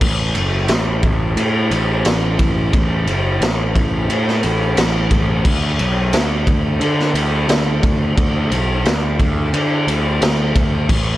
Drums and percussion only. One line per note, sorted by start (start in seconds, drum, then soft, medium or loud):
0.01 kick loud
0.01 crash loud
0.35 ride medium
0.68 snare loud
0.68 ride loud
1.03 kick medium
1.03 ride medium
1.37 ride medium
1.71 ride medium
2.05 snare loud
2.05 ride loud
2.39 kick medium
2.39 ride medium
2.73 kick loud
2.73 ride loud
3.07 ride medium
3.42 snare loud
3.42 ride loud
3.76 kick medium
3.76 ride medium
4.10 ride loud
4.28 snare soft
4.43 ride medium
4.77 snare loud
4.77 ride loud
5.11 kick medium
5.11 ride medium
5.45 kick loud
5.45 crash loud
5.79 ride medium
6.13 snare loud
6.13 ride loud
6.47 kick loud
6.47 ride medium
6.81 ride loud
7.00 snare soft
7.15 ride medium
7.49 snare loud
7.49 ride loud
7.83 kick loud
7.83 ride medium
8.18 kick loud
8.18 ride loud
8.52 ride medium
8.85 snare loud
8.85 ride loud
9.20 kick medium
9.20 ride medium
9.54 ride medium
9.88 ride medium
10.22 snare loud
10.22 ride loud
10.56 kick medium
10.56 ride medium
10.89 kick loud
10.89 crash loud